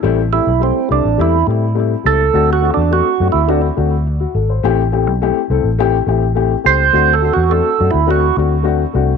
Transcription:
<<
  \new Staff \with { instrumentName = "Tonewheel organ" } { \time 4/4 \key a \dorian \tempo 4 = 104 r8 e'8 c'8 d'8 e'8 r4 a'8~ | \tuplet 3/2 { a'8 fis'8 d'8 fis'4 e'8 } d'8 r4. | r2. r8 c''8~ | \tuplet 3/2 { c''8 a'8 fis'8 a'4 e'8 } fis'8 r4. | }
  \new Staff \with { instrumentName = "Upright piano" } { \time 4/4 \key a \dorian << { r1 | r2. r16 fis'16 a'16 c''16~ | c''16 r2. r8. | r1 | } \\ { <g a c' e'>8 <g a c' e'>8 <g a c' e'>8 <g a c' e'>8 <g a c' e'>8 <g a c' e'>8 <g a c' e'>8 <g a c' e'>8 | <a c' d' fis'>8 <a c' d' fis'>8 <a c' d' fis'>8 <a c' d' fis'>8 <a c' d' fis'>8 <a c' d' fis'>8 r4 | <a c' e' g'>8 <a c' e' g'>8 <a c' e' g'>8 <a c' e' a'>8 <a c' e' g'>8 <a c' e' g'>8 <a c' e' g'>8 <a c' e' g'>8 | <a c' d' fis'>8 <a c' d' fis'>8 <a c' d' fis'>8 <a c' d' fis'>8 <a c' d' fis'>8 <a c' d' fis'>8 <a c' d' fis'>8 <a c' d' fis'>8 | } >> }
  \new Staff \with { instrumentName = "Fingered electric bass" } { \clef bass \time 4/4 \key a \dorian a,,8. b,,8 r16 c,16 a,,16 e,8 a,4 cis,8 | d,8. e,8 r16 fis,16 d,8. d,4 gis,,8 | a,,8. b,,8 r16 c,16 a,,8. a,,4 cis,8 | d,8. e,8 r16 fis,16 d,8. d,4 c,8 | }
>>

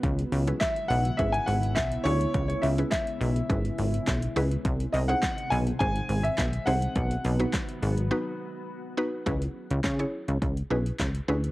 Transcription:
<<
  \new Staff \with { instrumentName = "Grand piano" } { \time 4/4 \key cis \minor \tempo 4 = 104 r4 e''8 fis''8 e''16 gis''16 fis''8 e''8 cis''8~ | cis''16 cis''16 e''8 e''2~ e''8 r8 | r8 dis''16 fis''8. gis''8 gis''8. e''8. fis''8~ | fis''4 r2. |
r1 | }
  \new Staff \with { instrumentName = "Synth pluck" } { \time 4/4 \key cis \minor r8. <cis' e' gis' b'>4 r16 <cis' e' gis' b'>4~ <cis' e' gis' b'>16 r16 <cis' e' gis' cis''>8~ | <cis' e' gis' cis''>8 r16 <cis' e' gis' b'>4 r16 <cis' e' gis' b'>4~ <cis' e' gis' b'>16 r16 <cis' e' gis' b'>8 | r8. <bis dis' gis' bis'>4 r16 <bis dis' gis' bis'>4~ <bis dis' gis' bis'>16 r16 <bis dis' gis' bis'>8 | r8. <b dis' fis' b'>4 r16 <b dis' fis' b'>4~ <b dis' fis' b'>16 r16 <b dis' fis' b'>8 |
<cis' e' gis' b'>4 r16 <cis' e' gis' cis''>4 r16 <cis' e' gis' b'>8. r16 <cis' e' gis' b'>8 | }
  \new Staff \with { instrumentName = "Ambient pad" } { \time 4/4 \key cis \minor <cis gis b e'>1~ | <cis gis b e'>1 | <bis, dis bis>1 | <fis b fis'>1 |
r1 | }
  \new Staff \with { instrumentName = "Analog synth bass" } { \clef bass \time 4/4 \key cis \minor cis,8 cis,8 r8 b,,8 gis,,8 gis,,8 b,,8 d,8 | cis,8 cis,8 r8 b,,8 gis,,8 gis,,8 b,,8 cis,8 | bis,,8 bis,,8 r8 b,,8 gis,,8 gis,,8 b,,8 bis,,8 | b,,8 b,,8 r8 gis,,8 r2 |
cis,8 r16 cis,16 cis8 r16 cis,16 cis,8 b,,8 cis,8 d,8 | }
  \new DrumStaff \with { instrumentName = "Drums" } \drummode { \time 4/4 <hh bd>16 hh16 hho16 hh16 <hc hh bd sn>16 hh16 hho16 hh16 <hh bd>16 hh16 hho16 hh16 <hc hh bd sn>16 hh16 hho16 hh16 | <hh bd>16 hh16 hho16 hh16 <hc hh bd sn>16 hh16 hho16 hh16 <hh bd>16 hh16 hho16 hh16 <hc hh bd sn>16 hh16 hho16 hh16 | <hh bd>16 hh16 hho16 hh16 <hc hh bd sn>16 hh16 hho16 hh16 <hh bd>16 hh16 hho16 hh16 <hc hh bd sn>16 hh16 hho16 hh16 | <hh bd>16 hh16 hho16 hh16 <hc hh bd sn>16 hh16 hho16 hh16 r4 r4 |
<hh bd>16 hh8 hh16 <hc hh bd sn>16 hh8 hh16 <hh bd>16 hh8 hh16 <hc hh bd sn>16 hh8 hh16 | }
>>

